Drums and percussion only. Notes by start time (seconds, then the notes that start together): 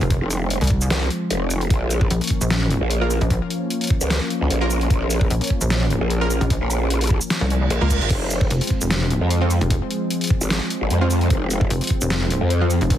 0.01 closed hi-hat
0.10 kick, closed hi-hat
0.30 closed hi-hat, shaker
0.50 closed hi-hat
0.61 closed hi-hat
0.64 closed hi-hat
0.67 kick, closed hi-hat
0.81 shaker
0.90 snare, closed hi-hat
1.10 closed hi-hat
1.30 closed hi-hat
1.51 closed hi-hat, shaker
1.61 closed hi-hat
1.70 kick, closed hi-hat
1.90 closed hi-hat, shaker
2.01 kick
2.10 closed hi-hat
2.21 closed hi-hat
2.24 closed hi-hat
2.27 kick, closed hi-hat
2.41 shaker
2.50 snare, closed hi-hat
2.70 closed hi-hat
2.90 closed hi-hat
3.10 closed hi-hat, shaker
3.21 closed hi-hat
3.30 kick, closed hi-hat
3.50 closed hi-hat
3.70 closed hi-hat
3.81 closed hi-hat
3.84 closed hi-hat
3.87 kick, closed hi-hat
4.01 shaker
4.10 snare, closed hi-hat
4.30 closed hi-hat
4.50 closed hi-hat
4.70 closed hi-hat, shaker
4.81 closed hi-hat
4.90 kick, closed hi-hat
5.10 closed hi-hat, shaker
5.21 kick
5.30 closed hi-hat
5.41 closed hi-hat
5.44 closed hi-hat
5.47 kick, closed hi-hat
5.61 shaker
5.70 snare, closed hi-hat
5.90 closed hi-hat
6.10 closed hi-hat
6.30 closed hi-hat, shaker
6.41 closed hi-hat
6.50 kick, closed hi-hat
6.70 closed hi-hat, shaker
6.90 closed hi-hat
7.01 closed hi-hat
7.04 closed hi-hat
7.07 kick, closed hi-hat
7.21 shaker
7.30 snare, closed hi-hat
7.50 closed hi-hat
7.70 closed hi-hat
7.90 kick, closed hi-hat, shaker
8.01 closed hi-hat
8.10 kick, closed hi-hat, crash
8.30 closed hi-hat, shaker
8.41 kick
8.50 closed hi-hat
8.61 closed hi-hat
8.64 closed hi-hat
8.67 kick, closed hi-hat
8.81 shaker
8.90 snare, closed hi-hat
9.10 closed hi-hat
9.30 closed hi-hat
9.50 closed hi-hat, shaker
9.61 closed hi-hat
9.70 kick, closed hi-hat
9.91 closed hi-hat
10.10 closed hi-hat
10.21 closed hi-hat
10.24 closed hi-hat
10.27 kick, closed hi-hat
10.41 shaker
10.50 snare, closed hi-hat
10.70 closed hi-hat
10.90 closed hi-hat
11.10 closed hi-hat, shaker
11.21 closed hi-hat
11.30 kick, closed hi-hat
11.50 closed hi-hat, shaker
11.61 kick
11.70 closed hi-hat
11.81 closed hi-hat
11.84 closed hi-hat
11.87 kick, closed hi-hat
12.01 shaker
12.10 snare, closed hi-hat
12.30 closed hi-hat
12.50 closed hi-hat
12.70 closed hi-hat, shaker
12.81 closed hi-hat
12.90 kick, closed hi-hat